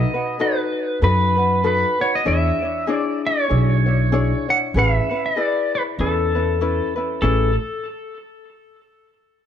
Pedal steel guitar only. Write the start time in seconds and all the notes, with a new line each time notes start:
Already playing: D#5
0.41 B4
1.04 B4
1.67 B4
2.01 C#5
2.15 D#5
2.28 E5
2.94 D5
3.27 C#5
4.50 F#5
4.79 E5
5.26 D5
5.75 B4
6.01 A4
7.22 A4